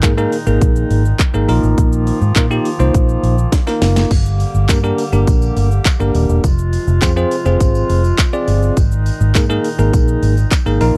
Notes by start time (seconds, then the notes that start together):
Already playing: A#2 D#3 G#3 D#4
0.03 A#3 D#4 G#4 A#4, kick, clap, closed hi-hat, shaker
0.17 A#3 D#4 G#4 A#4, shaker
0.32 open hi-hat, shaker
0.47 G#1 A#3 D#4 G#4 A#4, shaker
0.61 A#1, kick, closed hi-hat, shaker
0.76 shaker
0.90 G#1, open hi-hat, shaker
1.05 shaker
1.19 kick, clap, closed hi-hat, shaker
1.34 G#1 A#3 D#4 G#4 A#4, shaker
1.49 A#1 F3 A#3 D#4 F4 A#4, open hi-hat, shaker
1.63 A1, shaker
1.78 A#1, kick, closed hi-hat, shaker
1.93 shaker
2.07 open hi-hat, shaker
2.21 G#2, shaker
2.36 A#2 A#3 D#4 F4 A#4, kick, clap, closed hi-hat, shaker
2.50 A#3 D#4 F4 G4, shaker
2.65 open hi-hat, shaker
2.79 C2 A#3 D#4 F4 C5, shaker
2.94 kick, closed hi-hat, shaker
3.09 shaker
3.23 A#1, open hi-hat, shaker
3.38 shaker
3.52 kick, snare, closed hi-hat, shaker
3.67 A#3 D#4 F4 A#4, snare, shaker
3.82 F#1, snare, open hi-hat, shaker
3.96 snare, shaker
4.11 G1 D3 G3 G4, kick, crash, tambourine
4.26 shaker
4.40 open hi-hat, tambourine, shaker
4.54 G1, shaker
4.69 G2 A#3 D4 G4 A#4, kick, clap, closed hi-hat, tambourine, shaker
4.83 A#3 D4 G4 A#4, shaker
4.98 open hi-hat, tambourine, shaker
5.12 G1 A#3 D4 G4 A#4, tambourine, shaker
5.27 A#1, kick, closed hi-hat, tambourine, shaker
5.42 tambourine, shaker
5.57 G1, open hi-hat, tambourine, shaker
5.71 shaker
5.85 kick, clap, closed hi-hat, tambourine, shaker
6.00 G1 A#3 D4 G4 A#4, shaker
6.15 D#1, open hi-hat, tambourine, shaker
6.29 E1, shaker
6.44 F1 C3 F3 G#3 F4, kick, closed hi-hat, tambourine, shaker
6.58 shaker
6.73 open hi-hat, tambourine, shaker
6.87 F1, shaker
7.02 F2 C4 F4 G#4 C5, kick, clap, closed hi-hat, tambourine, shaker
7.16 C4 F4 G#4 C5, shaker
7.31 open hi-hat, tambourine, shaker
7.46 F1 C4 F4 G#4 C5, tambourine, shaker
7.60 G#1, kick, closed hi-hat, tambourine, shaker
7.75 tambourine, shaker
7.90 F1, open hi-hat, tambourine, shaker
8.04 tambourine, shaker
8.18 kick, clap, closed hi-hat, tambourine, shaker
8.33 C4 F4 G#4 D5, shaker
8.48 G1, open hi-hat, tambourine, shaker
8.62 shaker
8.77 G#1 A#2 D#3 D#4, kick, closed hi-hat, tambourine, shaker
8.92 shaker
9.06 open hi-hat, tambourine, shaker
9.21 G#1, shaker
9.35 G#2 A#3 D#4 G#4 A#4, kick, clap, closed hi-hat, tambourine, shaker
9.49 A#3 D#4 G#4 A#4, shaker
9.64 open hi-hat, tambourine, shaker
9.79 G#1 A#3 D#4 G#4 A#4, tambourine, shaker
9.93 kick, closed hi-hat, tambourine, shaker
10.08 shaker
10.23 G#1, open hi-hat, tambourine, shaker
10.37 tambourine, shaker
10.51 kick, clap, closed hi-hat, tambourine, shaker
10.66 G#1 A#3 D#4 G#4 A#4, tambourine, shaker
10.81 A#1 D#3 F3 A#3 D#4 F4 A#4, open hi-hat, tambourine, shaker